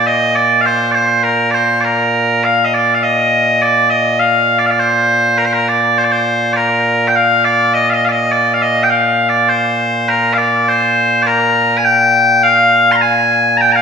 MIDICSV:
0, 0, Header, 1, 2, 480
1, 0, Start_track
1, 0, Tempo, 588235
1, 69, Time_signature, 4, 2, 24, 8
1, 11276, End_track
2, 0, Start_track
2, 0, Title_t, "Bagpipes"
2, 0, Program_c, 0, 109
2, 0, Note_on_c, 0, 46, 89
2, 55, Note_on_c, 0, 75, 105
2, 291, Note_off_c, 0, 75, 0
2, 291, Note_on_c, 0, 74, 91
2, 501, Note_off_c, 0, 74, 0
2, 501, Note_on_c, 0, 77, 93
2, 537, Note_off_c, 0, 77, 0
2, 537, Note_on_c, 0, 72, 93
2, 743, Note_off_c, 0, 72, 0
2, 743, Note_on_c, 0, 74, 81
2, 771, Note_off_c, 0, 74, 0
2, 771, Note_on_c, 0, 72, 81
2, 1007, Note_off_c, 0, 72, 0
2, 1007, Note_on_c, 0, 70, 78
2, 1230, Note_off_c, 0, 70, 0
2, 1230, Note_on_c, 0, 74, 89
2, 1256, Note_off_c, 0, 74, 0
2, 1256, Note_on_c, 0, 72, 89
2, 1472, Note_off_c, 0, 72, 0
2, 1472, Note_on_c, 0, 74, 62
2, 1504, Note_off_c, 0, 74, 0
2, 1504, Note_on_c, 0, 70, 62
2, 1993, Note_off_c, 0, 70, 0
2, 1993, Note_on_c, 0, 77, 92
2, 2159, Note_off_c, 0, 77, 0
2, 2159, Note_on_c, 0, 75, 56
2, 2238, Note_off_c, 0, 75, 0
2, 2238, Note_on_c, 0, 74, 94
2, 2405, Note_off_c, 0, 74, 0
2, 2405, Note_on_c, 0, 77, 64
2, 2472, Note_off_c, 0, 77, 0
2, 2472, Note_on_c, 0, 75, 93
2, 2955, Note_off_c, 0, 75, 0
2, 2955, Note_on_c, 0, 74, 95
2, 3184, Note_off_c, 0, 74, 0
2, 3184, Note_on_c, 0, 75, 89
2, 3423, Note_off_c, 0, 75, 0
2, 3423, Note_on_c, 0, 77, 84
2, 3744, Note_off_c, 0, 77, 0
2, 3744, Note_on_c, 0, 74, 89
2, 3806, Note_off_c, 0, 74, 0
2, 3806, Note_on_c, 0, 77, 66
2, 3842, Note_off_c, 0, 77, 0
2, 3842, Note_on_c, 0, 74, 66
2, 3910, Note_off_c, 0, 74, 0
2, 3910, Note_on_c, 0, 72, 98
2, 4389, Note_off_c, 0, 72, 0
2, 4389, Note_on_c, 0, 70, 83
2, 4449, Note_off_c, 0, 70, 0
2, 4449, Note_on_c, 0, 72, 77
2, 4512, Note_off_c, 0, 72, 0
2, 4512, Note_on_c, 0, 70, 82
2, 4638, Note_off_c, 0, 70, 0
2, 4638, Note_on_c, 0, 74, 78
2, 4879, Note_off_c, 0, 74, 0
2, 4879, Note_on_c, 0, 72, 93
2, 4927, Note_off_c, 0, 72, 0
2, 4927, Note_on_c, 0, 74, 79
2, 4990, Note_off_c, 0, 74, 0
2, 4990, Note_on_c, 0, 72, 86
2, 5326, Note_off_c, 0, 72, 0
2, 5326, Note_on_c, 0, 74, 81
2, 5355, Note_off_c, 0, 74, 0
2, 5355, Note_on_c, 0, 70, 81
2, 5775, Note_off_c, 0, 70, 0
2, 5775, Note_on_c, 0, 79, 73
2, 5839, Note_off_c, 0, 79, 0
2, 5839, Note_on_c, 0, 77, 105
2, 6077, Note_off_c, 0, 77, 0
2, 6077, Note_on_c, 0, 74, 98
2, 6317, Note_off_c, 0, 74, 0
2, 6317, Note_on_c, 0, 75, 99
2, 6446, Note_off_c, 0, 75, 0
2, 6446, Note_on_c, 0, 77, 60
2, 6474, Note_off_c, 0, 77, 0
2, 6474, Note_on_c, 0, 75, 97
2, 6567, Note_off_c, 0, 75, 0
2, 6567, Note_on_c, 0, 77, 63
2, 6598, Note_off_c, 0, 77, 0
2, 6598, Note_on_c, 0, 74, 63
2, 6627, Note_off_c, 0, 74, 0
2, 6627, Note_on_c, 0, 75, 82
2, 6787, Note_off_c, 0, 75, 0
2, 6787, Note_on_c, 0, 74, 95
2, 6969, Note_off_c, 0, 74, 0
2, 6969, Note_on_c, 0, 77, 73
2, 7034, Note_off_c, 0, 77, 0
2, 7034, Note_on_c, 0, 75, 100
2, 7208, Note_off_c, 0, 75, 0
2, 7208, Note_on_c, 0, 79, 75
2, 7261, Note_off_c, 0, 79, 0
2, 7261, Note_on_c, 0, 77, 89
2, 7584, Note_off_c, 0, 77, 0
2, 7584, Note_on_c, 0, 74, 84
2, 7741, Note_off_c, 0, 74, 0
2, 7741, Note_on_c, 0, 72, 90
2, 8230, Note_off_c, 0, 72, 0
2, 8230, Note_on_c, 0, 70, 92
2, 8433, Note_off_c, 0, 70, 0
2, 8433, Note_on_c, 0, 77, 81
2, 8470, Note_off_c, 0, 77, 0
2, 8470, Note_on_c, 0, 74, 81
2, 8717, Note_off_c, 0, 74, 0
2, 8717, Note_on_c, 0, 72, 97
2, 9157, Note_off_c, 0, 72, 0
2, 9157, Note_on_c, 0, 74, 94
2, 9193, Note_off_c, 0, 74, 0
2, 9193, Note_on_c, 0, 70, 94
2, 9608, Note_off_c, 0, 70, 0
2, 9608, Note_on_c, 0, 80, 74
2, 9665, Note_off_c, 0, 80, 0
2, 9665, Note_on_c, 0, 79, 106
2, 10144, Note_off_c, 0, 79, 0
2, 10144, Note_on_c, 0, 77, 114
2, 10539, Note_off_c, 0, 77, 0
2, 10539, Note_on_c, 0, 84, 89
2, 10569, Note_off_c, 0, 84, 0
2, 10569, Note_on_c, 0, 82, 89
2, 10617, Note_off_c, 0, 82, 0
2, 10617, Note_on_c, 0, 80, 118
2, 11074, Note_off_c, 0, 80, 0
2, 11074, Note_on_c, 0, 82, 94
2, 11105, Note_off_c, 0, 82, 0
2, 11105, Note_on_c, 0, 79, 94
2, 11195, Note_off_c, 0, 79, 0
2, 11195, Note_on_c, 0, 82, 103
2, 11223, Note_off_c, 0, 82, 0
2, 11223, Note_on_c, 0, 77, 103
2, 11276, Note_off_c, 0, 46, 0
2, 11276, Note_off_c, 0, 77, 0
2, 11276, End_track
0, 0, End_of_file